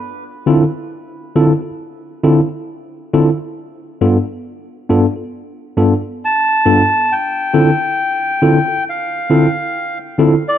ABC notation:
X:1
M:4/4
L:1/16
Q:"Swing 16ths" 1/4=68
K:Ddor
V:1 name="Melodica"
z16 | z12 a4 | g8 f4- f z2 d |]
V:2 name="Tine electric piano"
z2 [D,CEFA] z3 [D,CEFA] [FA] z2 [D,CEFA] z3 [D,CEFA] z | z2 [G,,B,DFA] z3 [G,,B,DFA] [FA] z2 [G,,B,DFA] z3 [G,,B,DFA] z | z2 [D,CEFA] z3 [D,CEFA] [FA] z2 [D,CEFA] z3 [D,CEFA] z |]